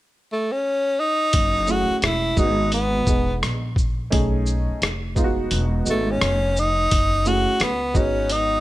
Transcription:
0.32 tenor saxophone A3
0.52 tenor saxophone C#4
1.00 tenor saxophone D#4
1.33 upright bass F#1, kick, closed hi-hat
1.67 upright piano A3 C#4 E4 G#4, tenor saxophone F#4, shaker
1.89 muted upright bass stroke
1.99 upright bass E1, tenor saxophone F#4, closed hi-hat
2.04 tenor saxophone E4, cross-stick
2.36 upright bass G#1, upright piano G#3 B3 D#4 F#4, tenor saxophone D#4, kick, shaker
2.72 tenor saxophone B3, closed hi-hat
3.06 upright bass E1, upright piano G#3 B3 D#4 G#4, kick, shaker
3.42 upright bass A#1, cross-stick, closed hi-hat
3.76 kick, shaker
4.10 upright bass B1, upright piano A3 C#4 D#4 G#4, kick, closed hi-hat
4.46 shaker
4.68 muted upright bass stroke
4.82 upright bass F1, cross-stick, closed hi-hat
5.15 upright piano G#3 B3 D#4 F4, kick, shaker
5.24 upright piano F#4
5.51 upright bass E1, closed hi-hat
5.84 upright bass G#1, upright piano G#3 B3 D#4 F#4, shaker
5.90 tenor saxophone A3
6.11 tenor saxophone C#4
6.21 upright bass F1, cross-stick, closed hi-hat
6.56 tenor saxophone D#4, shaker
6.91 upright bass F#1, kick, closed hi-hat
7.25 upright piano A3 C#4 E4 G#4, tenor saxophone F#4, shaker
7.47 muted upright bass stroke
7.60 upright bass C#2, tenor saxophone B3, cross-stick, closed hi-hat
7.94 upright bass G#1, upright piano G#3 B3 D#4 F#4, tenor saxophone C#4, kick, shaker
8.30 tenor saxophone D#4, closed hi-hat

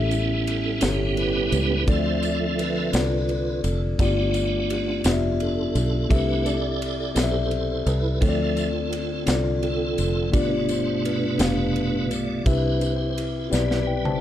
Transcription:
Already playing: fingered electric bass A1, tine electric piano A2 C#4 E4 G4 A4 E5, tonewheel organ G3 B3 C#4 E4 A4
0.11 ride, tambourine
0.47 ride
0.80 fingered electric bass G1, tine electric piano C#4 E4 G4 A4 C#5, tonewheel organ G4, snare, ride, tambourine
1.17 tonewheel organ E4 G4 B4, ride
1.52 fingered electric bass C#2, ride, tambourine
1.87 fingered electric bass D2, tine electric piano D3 C4 D4 F4 A4 D5, tonewheel organ F3 C4 A4 C5 E5, kick, ride, tambourine
1.91 tonewheel organ F4
2.23 tonewheel organ D5, ride, tambourine
2.59 tonewheel organ F4 B4, ride
2.93 fingered electric bass C2, tine electric piano C4 D4 F4 A4 D5, snare, ride, tambourine
3.29 ride
3.64 fingered electric bass F1, tonewheel organ A4, ride, tambourine
3.98 fingered electric bass G1, tine electric piano G2 B3 D4 F4 G4 D5, tonewheel organ A3 B3 D4 F4 G4, kick, ride, tambourine
4.34 ride, tambourine
4.70 ride
5.04 fingered electric bass F1, tine electric piano B3 D4 F4 G4 D5, tonewheel organ F4, snare, ride, tambourine
5.13 tine electric piano E5
5.40 tonewheel organ D4 F4 A4, ride
5.75 fingered electric bass B1, ride, tambourine
6.09 fingered electric bass C2, tine electric piano C3 C4 E4 G4 A4 E5, tonewheel organ A3 D4 E4 G4 B4, kick, ride, tambourine
6.45 tonewheel organ G4 A4 D5, ride, tambourine
6.82 ride
7.15 fingered electric bass B1, tine electric piano C4 E4 G4 A4 D5, tonewheel organ E4 A4 C5, snare, ride, tambourine
7.24 tine electric piano E5
7.51 ride
7.86 fingered electric bass C2, tonewheel organ B4, ride, tambourine
8.21 fingered electric bass D2, tine electric piano D3 C4 D4 F4 A4 C#5, tonewheel organ F3 C4 F4 A4 E5, kick, ride, tambourine
8.29 tine electric piano D5
8.57 ride, tambourine
8.93 ride
9.26 fingered electric bass C2, tine electric piano C4 D4 F4 A4 D5, tonewheel organ F4, snare, ride, tambourine
9.63 tonewheel organ C4 F4 A4, ride
9.98 fingered electric bass F1, ride, tambourine
10.31 fingered electric bass G1, tine electric piano G2 B3 D4 F4 G4 D5, tonewheel organ B2 A3 D4 F4 B4, kick, ride, tambourine
10.69 tonewheel organ C5, ride, tambourine
11.05 tonewheel organ D4 F4 B4, ride
11.38 fingered electric bass F1, tine electric piano B3 D4 F4 G4 F5, snare, ride, tambourine
11.76 ride
12.11 fingered electric bass B1, tonewheel organ D5, ride, tambourine
12.45 fingered electric bass C2, tine electric piano C3 C4 E4 G4 B4 E5, tonewheel organ D4 E4 G4 B4 C5, kick, ride, tambourine
12.81 ride, tambourine
13.18 ride
13.44 tonewheel organ F4
13.50 fingered electric bass B1, tonewheel organ G3 E4 B4, tine electric piano C4 E4 G4 B4 D5, snare, tambourine
13.71 snare
13.87 tine electric piano B4 G5
14.05 tine electric piano C5 A5, mid tom
14.16 tonewheel organ A4

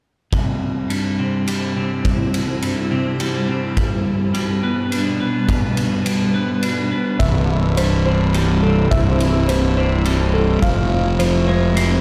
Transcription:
0.33 clean electric guitar C2, ambient pad G3 C4 E4 C5, kick, ride
0.90 clean electric guitar G2, ride
1.19 clean electric guitar C3
1.47 clean electric guitar G3, ride
1.77 clean electric guitar C3
2.05 clean electric guitar C2, kick, ride
2.34 ride
2.62 clean electric guitar G2, ride
2.91 clean electric guitar C3
3.20 clean electric guitar G3, ride
3.49 clean electric guitar C3
3.77 clean electric guitar G2, ambient pad B2 B3 D4 B4, kick, ride
4.34 clean electric guitar G3, ride
4.63 clean electric guitar B3
4.92 clean electric guitar D4, ride
5.20 clean electric guitar B3
5.49 clean electric guitar G2, kick, ride
5.77 ride
6.06 clean electric guitar G3, ride
6.34 clean electric guitar B3
6.62 clean electric guitar D4, ride
6.92 clean electric guitar B3
7.19 fingered electric bass C1, clean electric guitar C2, ambient pad C4 E4 C5, felt piano E5, kick, ride
7.77 clean electric guitar G2, felt piano C5, ride
8.05 clean electric guitar C3, felt piano C5
8.34 clean electric guitar G3, ride
8.63 clean electric guitar C3, felt piano A4
8.91 fingered electric bass C1, clean electric guitar C2, felt piano E5, kick, ride
9.20 ride
9.48 clean electric guitar G2, felt piano C5, ride
9.77 clean electric guitar C3, felt piano C5
10.05 clean electric guitar G3, ride
10.34 clean electric guitar C3, felt piano A4
10.62 fingered electric bass F1, clean electric guitar F2, ambient pad G#3 F4, felt piano F5, kick, ride
11.19 clean electric guitar F3, felt piano C5, ride
11.48 clean electric guitar G#3, felt piano C5
11.76 clean electric guitar C4, ride

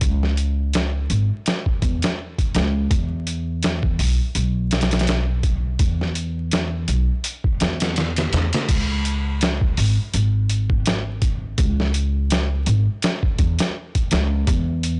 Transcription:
0.01 upright bass C#2, kick, closed hi-hat
0.23 snare
0.37 closed hi-hat
0.73 snare, closed hi-hat
1.10 upright bass G#1, closed hi-hat
1.46 snare, closed hi-hat
1.66 kick
1.82 upright bass E2, kick, closed hi-hat
2.02 snare, closed hi-hat
2.38 kick, closed hi-hat
2.54 upright bass C#2, snare, closed hi-hat
2.91 upright bass E2, kick, closed hi-hat
3.27 closed hi-hat
3.63 snare, closed hi-hat
3.83 kick
3.99 upright bass B1, open hi-hat
4.35 upright bass B1, closed hi-hat
4.71 snare, closed hi-hat
4.81 snare, closed hi-hat
4.91 snare, closed hi-hat
4.99 snare, closed hi-hat
5.07 snare, closed hi-hat
5.43 kick, closed hi-hat
5.79 upright bass E2, kick, closed hi-hat
6.01 snare
6.15 closed hi-hat
6.51 snare, closed hi-hat
6.88 upright bass B1, closed hi-hat
7.24 closed hi-hat
7.44 kick
7.60 upright bass E2, snare, closed hi-hat
7.80 snare, closed hi-hat
7.96 snare, closed hi-hat
8.16 snare, closed hi-hat
8.33 upright bass E2, snare, closed hi-hat
8.53 snare, closed hi-hat
8.69 upright bass C#2, kick, closed hi-hat, crash
9.05 closed hi-hat
9.41 snare, closed hi-hat
9.61 kick
9.77 upright bass G#1, open hi-hat
10.14 upright bass G#1, closed hi-hat
10.50 closed hi-hat
10.70 kick
10.86 snare, closed hi-hat
11.22 kick, closed hi-hat
11.58 upright bass C#2, kick, closed hi-hat
11.80 snare
11.94 closed hi-hat
12.30 snare, closed hi-hat
12.66 upright bass G#1, closed hi-hat
13.02 snare, closed hi-hat
13.23 kick
13.38 upright bass E2, kick, closed hi-hat
13.59 snare, closed hi-hat
13.95 kick, closed hi-hat
14.11 upright bass C#2, snare, closed hi-hat
14.47 upright bass E2, kick, closed hi-hat
14.83 closed hi-hat

